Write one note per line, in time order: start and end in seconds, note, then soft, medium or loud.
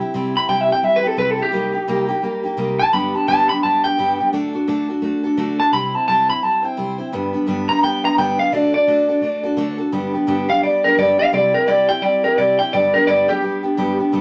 0.00 0.14 C4 soft
0.00 0.14 E4 medium
0.00 0.14 G4 medium
0.14 0.35 C3 medium
0.14 0.35 G3 medium
0.14 0.35 C4 medium
0.14 0.35 E4 loud
0.14 0.33 G4 medium
0.35 0.48 C4 soft
0.35 0.48 E4 medium
0.35 0.49 G4 medium
0.35 0.48 B5 medium
0.48 0.70 C3 medium
0.48 0.70 G3 medium
0.48 0.70 C4 medium
0.48 0.69 E4 medium
0.48 0.67 G4 medium
0.48 0.61 G5 loud
0.61 0.72 E5 medium
0.69 0.82 C4 soft
0.69 0.83 E4 medium
0.69 0.83 G4 medium
0.69 0.84 G5 loud
0.83 1.04 G3 medium
0.83 1.05 C4 medium
0.83 1.03 E4 medium
0.83 1.02 G4 medium
0.83 0.95 E5 medium
0.96 1.07 B4 medium
1.03 1.17 C4 soft
1.03 1.17 E4 medium
1.03 1.17 G4 medium
1.03 1.18 A4 loud
1.17 1.39 C3 medium
1.17 1.39 G3 medium
1.17 1.39 C4 medium
1.17 1.38 E4 medium
1.17 1.37 G4 medium
1.17 1.31 B4 loud
1.31 1.42 A4 medium
1.38 1.53 C4 soft
1.38 1.53 E4 soft
1.38 1.53 G4 soft
1.42 2.44 G4 medium
1.52 1.74 C3 medium
1.52 1.74 G3 medium
1.52 1.74 A#3 medium
1.52 1.74 D#4 medium
1.52 1.72 G4 medium
1.73 1.87 A#3 soft
1.73 1.88 D#4 soft
1.73 1.88 G4 medium
1.87 2.09 C3 medium
1.87 2.09 G3 medium
1.87 2.10 A#3 loud
1.87 2.09 D#4 loud
1.87 2.07 G4 loud
2.08 2.22 A#3 medium
2.08 2.23 D#4 medium
2.08 2.23 G4 medium
2.22 2.44 G3 medium
2.22 2.44 A#3 medium
2.22 2.44 D#4 medium
2.22 2.42 G4 medium
2.43 2.57 A#3 medium
2.43 2.57 D#4 medium
2.43 2.57 G4 medium
2.57 2.79 C3 medium
2.57 2.79 G3 medium
2.57 2.79 A#3 medium
2.57 2.79 D#4 medium
2.57 2.77 G4 medium
2.79 2.93 A#3 soft
2.79 2.94 D#4 soft
2.79 2.93 G4 medium
2.79 2.93 A5 loud
2.93 3.14 G2 medium
2.93 3.14 D3 medium
2.93 3.15 G3 medium
2.93 3.14 B3 medium
2.93 3.13 D4 medium
2.93 3.12 G4 medium
2.93 3.15 B5 medium
3.14 3.27 G3 soft
3.14 3.27 B3 soft
3.14 3.27 D4 soft
3.14 3.28 G4 soft
3.14 3.27 A5 loud
3.27 3.49 G2 medium
3.27 3.49 D3 medium
3.27 3.49 G3 medium
3.27 3.49 B3 medium
3.27 3.48 D4 medium
3.27 3.48 G4 medium
3.27 3.49 A5 loud
3.49 3.61 G3 soft
3.49 3.62 B3 medium
3.49 3.63 D4 medium
3.49 3.63 G4 medium
3.49 3.63 B5 loud
3.63 3.84 G3 medium
3.63 3.84 B3 medium
3.63 3.84 D4 medium
3.63 3.83 G4 medium
3.63 3.84 A5 medium
3.84 3.97 G3 soft
3.84 3.98 B3 medium
3.84 3.98 D4 soft
3.84 3.98 G4 medium
3.84 4.32 G5 loud
3.98 4.19 G2 medium
3.98 4.20 D3 medium
3.98 4.20 G3 medium
3.98 4.19 B3 medium
3.98 4.19 D4 medium
3.98 4.18 G4 loud
4.19 4.33 G3 soft
4.19 4.33 B3 soft
4.19 4.32 D4 medium
4.19 4.33 G4 medium
4.33 4.54 D3 medium
4.33 4.54 A3 medium
4.33 4.54 D4 medium
4.33 4.53 F#4 medium
4.33 4.52 A4 loud
4.53 4.67 D4 soft
4.53 4.67 F#4 medium
4.53 4.68 A4 medium
4.67 4.89 D3 medium
4.67 4.89 A3 medium
4.67 4.89 D4 medium
4.67 4.88 F#4 medium
4.67 4.87 A4 medium
4.88 5.02 D4 medium
4.88 5.03 F#4 medium
4.88 5.03 A4 medium
5.02 5.24 A3 medium
5.02 5.24 D4 medium
5.02 5.24 F#4 medium
5.02 5.22 A4 medium
5.24 5.37 D4 medium
5.24 5.37 F#4 medium
5.24 5.38 A4 medium
5.37 5.59 D3 medium
5.37 5.59 A3 medium
5.37 5.59 D4 loud
5.37 5.59 F#4 medium
5.37 5.57 A4 loud
5.59 5.72 D4 soft
5.59 5.73 F#4 soft
5.59 5.73 A4 medium
5.59 5.73 A5 loud
5.72 5.94 C3 medium
5.72 5.94 G3 medium
5.72 5.94 C4 medium
5.72 5.94 E4 medium
5.72 5.93 C5 medium
5.72 5.95 B5 loud
5.94 6.08 C4 soft
5.94 6.08 E4 soft
5.94 6.08 C5 soft
5.94 6.07 A5 medium
6.08 6.29 C3 medium
6.08 6.29 G3 medium
6.08 6.30 C4 medium
6.08 6.28 E4 medium
6.08 6.27 C5 medium
6.08 6.29 A5 loud
6.28 6.42 C4 soft
6.28 6.42 E4 medium
6.28 6.43 C5 medium
6.28 6.43 B5 loud
6.42 6.64 G3 medium
6.42 6.64 C4 medium
6.42 6.63 E4 medium
6.42 6.61 C5 medium
6.42 6.64 A5 medium
6.63 6.77 C4 medium
6.63 6.77 E4 medium
6.63 6.77 C5 medium
6.63 7.32 G5 loud
6.77 6.99 C3 medium
6.77 6.99 G3 medium
6.77 6.99 C4 medium
6.77 6.98 E4 medium
6.77 6.97 C5 loud
6.98 7.13 C4 soft
6.98 7.13 E4 medium
6.98 7.13 C5 medium
7.12 7.34 G2 medium
7.12 7.34 D3 medium
7.12 7.34 G3 loud
7.12 7.33 B3 medium
7.12 7.33 D4 medium
7.12 7.32 B4 loud
7.33 7.46 G3 soft
7.33 7.47 B3 medium
7.33 7.47 D4 medium
7.33 7.47 B4 medium
7.47 7.69 G2 medium
7.47 7.69 D3 medium
7.47 7.69 G3 medium
7.47 7.69 B3 medium
7.47 7.68 D4 medium
7.47 7.67 B4 medium
7.69 7.81 G3 soft
7.69 7.82 B3 medium
7.69 7.83 D4 medium
7.69 7.83 B4 medium
7.69 7.82 A#5 loud
7.83 8.04 G3 medium
7.83 8.04 B3 medium
7.83 8.03 D4 medium
7.83 8.02 B4 medium
7.83 8.04 G5 medium
8.03 8.17 G3 medium
8.03 8.17 B3 medium
8.03 8.18 D4 medium
8.03 8.18 B4 medium
8.03 8.18 A#5 loud
8.18 8.39 G2 medium
8.18 8.39 D3 medium
8.18 8.39 G3 medium
8.18 8.39 B3 medium
8.18 8.39 D4 medium
8.18 8.38 B4 medium
8.18 8.39 G5 loud
8.39 8.53 B3 soft
8.39 8.52 D4 soft
8.39 8.53 B4 medium
8.39 8.53 F5 medium
8.52 8.74 D3 medium
8.52 8.74 A3 medium
8.52 8.74 D4 medium
8.52 8.73 F#4 medium
8.52 8.72 A4 medium
8.52 8.73 D5 medium
8.73 8.87 D4 soft
8.73 8.87 F#4 soft
8.73 8.87 A4 medium
8.73 9.76 D5 loud
8.87 9.09 D3 medium
8.87 9.09 A3 medium
8.87 9.09 D4 medium
8.87 9.09 F#4 medium
8.87 9.07 A4 medium
9.08 9.21 D4 soft
9.08 9.22 F#4 medium
9.08 9.23 A4 medium
9.22 9.44 A3 medium
9.22 9.44 D4 medium
9.22 9.43 F#4 medium
9.22 9.42 A4 medium
9.43 9.57 D4 medium
9.43 9.57 F#4 medium
9.43 9.58 A4 medium
9.57 9.79 D3 medium
9.57 9.79 A3 medium
9.57 9.79 D4 medium
9.57 9.78 F#4 medium
9.57 9.77 A4 loud
9.78 9.92 D4 soft
9.78 9.93 F#4 medium
9.78 9.92 A4 medium
9.92 10.14 G2 medium
9.92 10.14 D3 medium
9.92 10.14 G3 medium
9.92 10.14 B3 loud
9.92 10.13 D4 loud
9.92 10.12 G4 medium
10.13 10.27 G3 soft
10.13 10.27 B3 medium
10.13 10.27 D4 medium
10.13 10.27 G4 medium
10.27 10.49 G2 medium
10.27 10.49 D3 medium
10.27 10.49 G3 loud
10.27 10.48 B3 loud
10.27 10.47 D4 loud
10.27 10.46 G4 medium
10.48 10.61 G3 soft
10.48 10.62 B3 medium
10.48 10.63 D4 medium
10.48 10.62 G4 medium
10.48 10.63 F5 loud
10.62 10.84 G3 medium
10.62 10.84 B3 medium
10.62 10.84 D4 medium
10.62 10.83 G4 medium
10.62 10.84 D5 medium
10.84 10.97 G3 soft
10.84 10.98 B3 soft
10.84 10.98 D4 medium
10.84 10.98 G4 medium
10.84 10.98 A#4 medium
10.97 11.19 G2 medium
10.97 11.19 D3 medium
10.97 11.19 G3 medium
10.97 11.18 B3 medium
10.97 11.17 D4 medium
10.97 11.16 G4 medium
10.97 11.19 D5 medium
11.17 11.32 G3 soft
11.17 11.33 B3 soft
11.17 11.33 D4 medium
11.17 11.32 G4 soft
11.17 11.33 F5 medium
11.32 11.54 C3 medium
11.32 11.54 G3 medium
11.32 11.54 C4 medium
11.32 11.53 E4 medium
11.32 11.52 G4 medium
11.32 11.54 D5 medium
11.53 11.67 C4 soft
11.53 11.67 E4 soft
11.53 11.67 G4 soft
11.53 11.68 A#4 medium
11.67 11.89 C3 medium
11.67 11.89 G3 medium
11.67 11.89 C4 medium
11.67 11.89 E4 medium
11.67 11.88 G4 medium
11.67 11.88 D5 medium
11.89 12.02 C4 soft
11.89 12.02 E4 medium
11.89 12.03 G4 medium
11.89 12.02 G5 loud
12.01 12.23 G3 medium
12.01 12.24 C4 medium
12.01 12.24 E4 medium
12.01 12.23 G4 medium
12.01 12.23 D5 medium
12.24 12.37 C4 medium
12.24 12.37 E4 medium
12.24 12.38 G4 medium
12.24 12.37 A#4 medium
12.38 12.59 C3 medium
12.38 12.59 G3 medium
12.38 12.59 C4 medium
12.38 12.59 E4 medium
12.38 12.58 G4 medium
12.38 12.58 D5 medium
12.59 12.74 C4 soft
12.59 12.73 E4 medium
12.59 12.73 G4 medium
12.59 12.72 G5 medium
12.73 12.94 G2 medium
12.73 12.94 D3 medium
12.73 12.94 G3 medium
12.73 12.94 B3 medium
12.73 12.94 D4 medium
12.73 12.93 G4 medium
12.73 12.93 D5 medium
12.94 13.07 G3 soft
12.94 13.08 B3 soft
12.94 13.07 D4 soft
12.94 13.08 G4 medium
12.94 13.07 A#4 medium
13.07 13.29 G2 medium
13.07 13.29 D3 medium
13.07 13.29 G3 medium
13.07 13.29 B3 medium
13.07 13.28 D4 medium
13.07 13.27 G4 medium
13.07 13.28 D5 loud
13.28 13.41 G3 soft
13.28 13.42 B3 medium
13.28 13.43 D4 medium
13.28 13.42 G4 medium
13.28 13.97 G4 loud
13.42 13.63 G3 medium
13.42 13.63 B3 medium
13.42 13.63 D4 medium
13.42 13.62 G4 medium
13.63 13.77 G3 soft
13.63 13.77 B3 soft
13.63 13.77 D4 medium
13.63 13.77 G4 medium
13.77 13.99 G2 medium
13.77 13.99 D3 loud
13.77 13.99 G3 medium
13.77 13.99 B3 loud
13.77 13.99 D4 loud
13.77 13.98 G4 loud
13.99 14.12 G3 soft
13.99 14.12 B3 soft
13.99 14.12 D4 medium
13.99 14.13 G4 medium
14.12 14.21 G2 medium
14.12 14.21 D3 medium
14.12 14.21 G3 loud
14.12 14.21 B3 loud
14.12 14.21 D4 medium
14.12 14.21 G4 medium